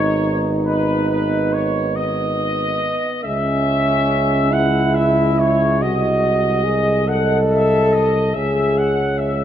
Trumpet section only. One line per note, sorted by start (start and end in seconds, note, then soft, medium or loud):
0.00 0.49 C#5 medium
0.66 1.09 B4 medium
1.10 1.53 B4 medium
1.53 1.97 C#5 medium
1.95 3.25 D#5 medium
3.24 4.50 E5 medium
4.53 4.96 F#5 medium
4.95 5.38 E5 medium
5.39 5.82 C#5 medium
5.82 7.08 D#5 medium
7.09 7.40 F#5 medium
7.52 7.93 E5 medium
7.93 8.36 D#5 medium
8.34 8.77 E5 medium
8.78 9.19 F#5 medium
9.18 9.44 E5 medium